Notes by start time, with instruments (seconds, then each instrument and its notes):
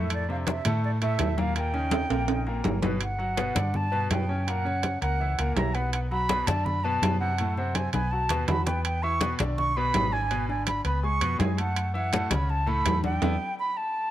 Already playing: fingered electric bass F2, grand piano A2 A3 A4
0.10 flute D5, high conga, high timbale
0.29 grand piano C3 C4 D4, flute F5, high conga
0.47 flute E5, high conga, high timbale, low timbale
0.65 grand piano A2 A3 A4, fingered electric bass A2, low conga, high timbale
0.84 flute D5, high conga
1.02 grand piano A2 A3 A4, flute E5, high conga, high timbale
1.19 fingered electric bass D#2, high conga, high timbale, low timbale
1.37 grand piano A#2 A#3 A#4, flute F5, high conga
1.55 grand piano A#2 A#3 A#4, flute G5, high conga, high timbale
1.74 grand piano C#3 C#4 D#4, high conga
1.91 high conga, high timbale
2.10 fingered electric bass A#1, grand piano A#2 A#3 A#4, high conga, high timbale
2.28 grand piano C#3 C#4 D#4, high conga, high timbale
2.47 grand piano A#2 A#3 A#4, high conga
2.64 fingered electric bass G1, high conga, low timbale
2.82 grand piano B2 B3 B4, high conga, low timbale
3.01 flute F#5, high conga, high timbale
3.18 grand piano F#3 F#4 F#5, high conga
3.37 grand piano B2 B3 B4, high conga, high timbale, low timbale
3.55 fingered electric bass G2, grand piano D3 D4 D5, high conga, low conga, high timbale
3.74 flute A5, high conga, low conga
3.92 grand piano B2 B3 B4, high conga
4.10 fingered electric bass F#2, flute G5, high conga, high timbale, low timbale
4.29 grand piano C#3 C#4 C#5
4.47 grand piano A#2 A#3 A#4, flute F#5, high conga, high timbale
4.65 grand piano C#3 C#4 C#5, high conga
4.83 high conga, high timbale, low timbale
5.01 fingered electric bass C#2, grand piano A#3 A#4 A#5, flute F#5, high timbale
5.20 grand piano E3 E4 E5, high conga
5.38 fingered electric bass C#2, grand piano A#2 A#3 A#4, high conga, high timbale
5.56 fingered electric bass B1, grand piano E3 E4 E5, flute A#5, high conga, high timbale, low timbale
5.74 grand piano B3 B4 B5, flute F#5, high conga, high timbale
5.93 flute F#5, high conga, high timbale
6.11 grand piano F#3 F#4 F#5, flute B5, high conga
6.29 grand piano B2 B3 B4, high conga, high timbale, low timbale
6.47 fingered electric bass F#2, grand piano D3 D4 D5, flute A5, high conga, low conga, high timbale
6.65 flute B5, high conga, low conga
6.84 grand piano B2 B3 B4, flute A5, high conga
7.02 fingered electric bass F#2, high conga, high timbale, low timbale
7.20 grand piano C3 C4 C5, flute F#5
7.38 grand piano A2 A3 A4, high conga, high timbale
7.57 grand piano C3 C4 C5, flute F#5, high conga
7.75 flute G#5, high conga, high timbale, low timbale
7.93 fingered electric bass B1, grand piano B3 B4 B5, flute G#5, high conga, high timbale
8.11 grand piano F#3 F#4 F#5, flute A5
8.29 fingered electric bass D#2, grand piano B2 B3 B4, low conga, high timbale
8.48 fingered electric bass E2, grand piano F#3 F#4 F#5, flute B5, low conga, high timbale, low timbale
8.66 grand piano B3 B4 B5, flute G5, low conga, high timbale
8.85 flute G5, high conga, high timbale
9.03 grand piano E3 E4 E5, flute C#6, high conga
9.21 grand piano B2 B3 B4, high conga, high timbale, low timbale
9.39 fingered electric bass B1, grand piano D3 D4 D5, high conga, low conga, high timbale
9.58 flute C#6, high conga, low conga
9.77 grand piano B2 B3 B4, flute B5, high conga
9.94 fingered electric bass G#1, high conga, high timbale, low timbale
10.12 grand piano D3 D4 D5, flute G#5
10.31 grand piano B2 B3 B4, high conga, high timbale
10.49 grand piano D3 D4 D5, flute G#5, high conga
10.67 flute B5, high conga, high timbale, low timbale
10.85 fingered electric bass C#2, grand piano B3 B4 B5, flute B5, high timbale
11.03 grand piano G#3 G#4 G#5, flute C#6, high conga
11.21 fingered electric bass F2, grand piano B2 B3 B4, high conga, high timbale
11.38 fingered electric bass F#2, grand piano G#3 G#4 G#5, flute G#5, high conga, high timbale, low timbale
11.57 grand piano A3 A4 A5, flute F#5, high conga, high timbale
11.76 high conga, high timbale
11.94 grand piano E3 E4 E5, flute F#5, high conga
12.12 grand piano A2 A3 A4, high conga, high timbale, low timbale
12.30 fingered electric bass C#2, grand piano C#3 C#4 C#5, flute B5, high conga, low conga, high timbale
12.49 flute A5, high conga
12.66 grand piano A2 A3 A4, flute B5, high conga
12.86 fingered electric bass E2, high conga, high timbale, low timbale
13.03 grand piano D3 D4 D5, flute G5, high conga
13.22 fingered electric bass E2, grand piano B3 D4 E4, high conga, high timbale
13.59 flute B5
13.77 flute A5